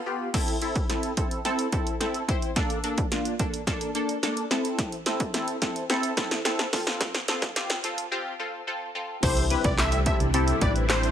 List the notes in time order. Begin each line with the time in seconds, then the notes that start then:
0.06 B3 F4 G4
0.34 C4 E4 A4, kick, snare, closed hi-hat, crash
0.48 closed hi-hat
0.62 C4 E4 A4, closed hi-hat
0.76 kick, closed hi-hat
0.89 C4 E4 A4, snare, closed hi-hat
1.03 closed hi-hat
1.17 C4 E4 A4, kick, closed hi-hat
1.31 closed hi-hat
1.45 C4 E4 A4, snare, closed hi-hat
1.59 closed hi-hat
1.72 C4 E4 A4, kick, closed hi-hat
1.87 closed hi-hat
2.00 C4 E4 A4, snare, closed hi-hat
2.14 closed hi-hat
2.28 C4 E4 C5, kick, closed hi-hat
2.42 closed hi-hat
2.56 A#3 D4 A4, kick, snare, closed hi-hat
2.70 closed hi-hat
2.84 A#3 D4 A4, closed hi-hat
2.98 kick, closed hi-hat
3.12 A#3 D4 F4, snare, closed hi-hat
3.25 closed hi-hat
3.39 A#3 D4 A4, kick, closed hi-hat
3.54 closed hi-hat
3.67 A#3 D4 A4, kick, snare, closed hi-hat
3.81 closed hi-hat
3.95 A#3 D4 A4, closed hi-hat
4.09 closed hi-hat
4.23 A#3 D4 A4, snare, closed hi-hat
4.37 closed hi-hat
4.51 C4 E4 A4, snare, closed hi-hat
4.65 closed hi-hat
4.79 kick, snare, closed hi-hat
4.92 closed hi-hat
5.06 C4 E4 A4, snare, closed hi-hat
5.20 kick, closed hi-hat
5.34 C4 E4 A4, snare, closed hi-hat
5.48 closed hi-hat
5.62 C4 E4 A4, kick, snare, closed hi-hat
5.76 closed hi-hat
5.90 C4 E4 A4, snare, closed hi-hat
6.03 closed hi-hat
6.17 C4 E4 A4, kick, snare, closed hi-hat
6.31 snare, closed hi-hat
6.45 C4 E4 A4, snare, closed hi-hat
6.59 snare, closed hi-hat
6.73 C4 F4 A4, kick, snare, open hi-hat
6.87 snare, closed hi-hat
7.01 kick, snare, closed hi-hat
7.14 snare, closed hi-hat
7.28 C4 F4 A4, snare, closed hi-hat
7.42 kick, snare, closed hi-hat
7.56 C4 F4 G4, snare, closed hi-hat
7.70 snare, closed hi-hat
7.84 C4 F4 A4, closed hi-hat
7.98 closed hi-hat
8.12 C4 F4 G4
8.39 C4 F4 A4
8.67 C4 F4 A4
8.95 C4 F4 A4
9.23 C2 C3 G3 A3 C4 D4 E4 G4 A4 C5, kick, closed hi-hat, crash
9.37 closed hi-hat
9.50 C4 E4 G4 B4, closed hi-hat
9.64 C2 D5, kick, closed hi-hat
9.78 C4 E4 G4 A4 E5, snare, clap, closed hi-hat
9.92 closed hi-hat
10.06 C4 E4 G4 A4 E5, kick, closed hi-hat
10.20 C2, closed hi-hat
10.34 C4 E4 G4 A4, closed hi-hat
10.48 closed hi-hat
10.61 A1 C4 E4 G4 B4 D5, kick, closed hi-hat
10.76 closed hi-hat
10.89 C4 E4 G4 A4 C5, snare, clap, closed hi-hat
11.03 closed hi-hat